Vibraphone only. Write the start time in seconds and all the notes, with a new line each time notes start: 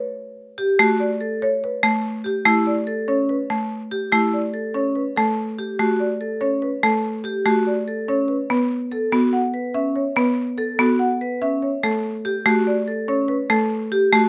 0.58 G4
0.79 F#4
1.21 A4
2.24 G4
2.45 E4
2.87 A4
3.08 C#4
3.91 G4
4.12 E4
4.54 A4
4.74 C#4
5.58 G4
5.79 F#4
6.21 A4
6.41 C#4
7.25 G4
7.46 F#4
7.88 A4
8.09 C#4
8.91 A4
9.12 F#4
9.54 B4
9.74 C#4
10.58 A4
10.79 F#4
11.21 B4
11.42 C#4
12.25 G4
12.46 F#4
12.88 A4
13.08 C#4
13.92 G4
14.12 F#4